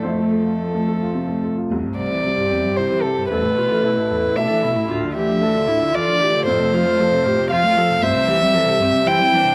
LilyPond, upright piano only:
\new Staff \with { instrumentName = "Upright piano" } { \time 3/4 \key c \major \tempo 4 = 114 << { c''2~ c''8 r8 | r2. | r2. | r2. |
r2. | r2. | } \\ { f,16 a16 a'16 f'8 a16 a'16 f'16 c16 a16 a'16 f'16 | c,4 g4 <e' c''>4 | a,,4 a4 <e' e''>4 | d,4 a4 <f' d''>4 |
f,4 a4 <f' c''>4 | c,4 g4 <e' c''>4 | } >> }